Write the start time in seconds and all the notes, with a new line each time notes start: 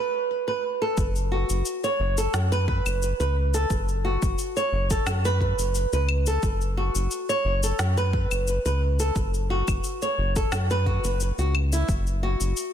Already playing: B4
0.48 B4
0.82 A4
0.97 F#1, kick, shaker
1.16 shaker
1.32 F#4
1.50 F#1, shaker
1.66 shaker
1.84 C#5, shaker
2.00 F#1
2.18 A4, shaker
2.34 F#2, snare, shaker
2.52 B4, shaker
2.68 B4, kick
2.86 F#1, claves, shaker
3.02 shaker
3.20 C#2 B4, shaker
3.54 A4, shaker
3.70 F#1, kick, shaker
3.88 shaker
4.05 F#4
4.22 F#1, kick, shaker
4.39 shaker
4.57 C#5, shaker
4.72 F#1
4.91 A4, kick, shaker
5.06 F#2, snare, claves, shaker
5.25 B4, shaker
5.41 B4, kick
5.58 F#1, shaker
5.75 shaker
5.93 C#2 B4, shaker
6.09 claves
6.27 A4, shaker
6.43 F#1, kick, shaker
6.61 shaker
6.77 F#4
6.95 F#1, shaker
7.11 shaker
7.29 C#5, shaker
7.45 F#1
7.63 A4, shaker
7.79 F#2, snare, shaker
7.97 B4, shaker
8.13 B4, kick
8.31 F#1, claves, shaker
8.48 shaker
8.65 C#2 B4, shaker
9.00 A4, shaker
9.16 F#1, kick, shaker
9.34 shaker
9.50 F#4
9.68 F#1, kick, claves, shaker
9.84 shaker
10.02 C#5, shaker
10.18 F#1
10.36 A4, kick, shaker
10.52 F#2, snare, claves, shaker
10.70 B4, shaker
10.86 F#4, kick
11.04 F#1 B4, shaker
11.20 shaker
11.38 C#2 F#4, shaker
11.55 claves
11.73 E4, shaker
11.89 F#1, kick, shaker
12.07 shaker
12.23 F#4
12.40 F#1, shaker
12.57 shaker